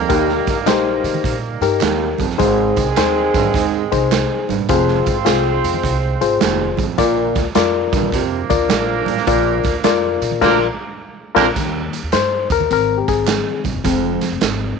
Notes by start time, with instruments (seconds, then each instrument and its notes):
Already playing: horn section G3 A#3 D#4 A#4
0.09 baritone saxophone D#2, upright bass D#2, reed electric piano D#4 G4 A#4, kick, closed hi-hat, tambourine, muted conga
0.29 snare
0.47 upright bass G2, kick, snare, closed hi-hat, tambourine, muted conga
0.66 upright bass A#1, reed electric piano D#4 G4 C5, snare, clap, closed hi-hat, tambourine, high conga
1.04 upright bass D#3, closed hi-hat, tambourine, muted conga
1.14 low conga
1.24 upright bass A#2, kick, closed hi-hat
1.61 upright bass G2, reed electric piano D#4 G4 A#4, closed hi-hat, tambourine, muted conga
1.81 baritone saxophone D#2, upright bass D#2, snare, clap, closed hi-hat, tambourine, high conga
2.18 upright bass G1, baritone saxophone F2, kick, closed hi-hat, tambourine, high conga
2.30 snare
2.38 upright bass G#1, baritone saxophone G#2, horn section D#3 G#3 C4 G#4, reed electric piano D#4 G#4 C5, kick, closed hi-hat, tambourine, muted conga
2.76 upright bass C2, kick, closed hi-hat, tambourine, muted conga
2.97 reed electric piano D#4 G#4 C5, snare, clap, closed hi-hat, tambourine, high conga
3.34 baritone saxophone G2, upright bass G#2, kick, closed hi-hat, tambourine, muted conga
3.44 low conga
3.54 upright bass D#2, baritone saxophone G#2, kick, closed hi-hat, tambourine
3.92 upright bass C2, reed electric piano D#4 G#4 C5, kick, closed hi-hat, tambourine, muted conga, low conga
4.11 snare, clap, closed hi-hat, tambourine, high conga
4.49 upright bass G#1, baritone saxophone G2, closed hi-hat, tambourine, high conga
4.59 upright bass A#1
4.69 upright bass F1, baritone saxophone F2, horn section G#3 C4 F4 C5, reed electric piano F4 G#4 C5, kick, closed hi-hat, tambourine, muted conga
4.88 snare
5.06 upright bass G#1, kick, closed hi-hat, tambourine, muted conga
5.25 upright bass C2, reed electric piano F4 G#4 C5, snare, clap, closed hi-hat, tambourine, high conga
5.64 upright bass F2, closed hi-hat, tambourine, muted conga
5.74 low conga
5.83 upright bass C2, kick, closed hi-hat
6.21 upright bass G#1, reed electric piano F4 G#4 C5, closed hi-hat, tambourine, muted conga
6.41 upright bass F1, baritone saxophone D#2, snare, clap, closed hi-hat, tambourine, high conga
6.77 upright bass A1, baritone saxophone F2, kick, closed hi-hat, tambourine, high conga
6.98 upright bass A#1, baritone saxophone A#2, reed electric piano F4 A#4 D5, kick, closed hi-hat, tambourine, muted conga
7.35 upright bass D2, kick, snare, closed hi-hat, tambourine, muted conga
7.55 upright bass F2, reed electric piano F4 A#4 D5, snare, clap, closed hi-hat, tambourine, high conga
7.93 baritone saxophone G2, upright bass A#2, kick, closed hi-hat, tambourine, muted conga
8.02 low conga
8.12 upright bass F2, baritone saxophone C3, horn section F3 A#3 D4 A#4, kick, closed hi-hat, tambourine
8.50 upright bass D2, reed electric piano F4 A#4 D5, kick, closed hi-hat, tambourine, muted conga, low conga
8.69 upright bass A#1, snare, clap, closed hi-hat, tambourine, high conga
9.06 upright bass A1, baritone saxophone A#2, closed hi-hat, high conga
9.18 snare
9.27 upright bass A#1, baritone saxophone A#2, reed electric piano F4 A#4 D5, kick, closed hi-hat, tambourine, muted conga
9.64 upright bass D2, kick, snare, closed hi-hat, tambourine, muted conga
9.84 upright bass F2, reed electric piano F4 A#4 D5, snare, clap, closed hi-hat, tambourine, high conga
10.22 upright bass A#2, closed hi-hat, tambourine
10.31 low conga
10.41 upright bass A#1, baritone saxophone D2, horn section F3 A#3 D4 A#4, reed electric piano F4 A#4 D5, kick, snare, crash
11.35 upright bass A#1, baritone saxophone F2, horn section F3 A#3 D4 A#4, reed electric piano F4 A#4 D5, kick, snare, crash
11.55 baritone saxophone D#2, upright bass D#2, reed electric piano D#3 G3 A#3, kick, closed hi-hat, tambourine, muted conga
11.93 closed hi-hat, tambourine, muted conga
12.03 upright bass D#2
12.12 upright bass G2, reed electric piano C5, snare, clap, closed hi-hat, tambourine, high conga
12.50 upright bass D#2, reed electric piano A#4, kick, closed hi-hat, tambourine
12.60 low conga
12.70 upright bass G#1, reed electric piano D#3 G#3 C4 A#4, closed hi-hat, tambourine
12.98 reed electric piano G4
13.08 upright bass G#1, reed electric piano G#4, kick, closed hi-hat, tambourine, muted conga, low conga
13.27 snare, clap, closed hi-hat, tambourine, high conga
13.64 upright bass A#1, kick, closed hi-hat, tambourine, high conga
13.75 upright bass E1
13.84 upright bass F1, baritone saxophone F2, reed electric piano F3 G#3 C4, kick, closed hi-hat, tambourine, muted conga
14.21 snare, closed hi-hat, tambourine, muted conga
14.32 upright bass F1
14.41 upright bass G#1, snare, clap, closed hi-hat, tambourine, high conga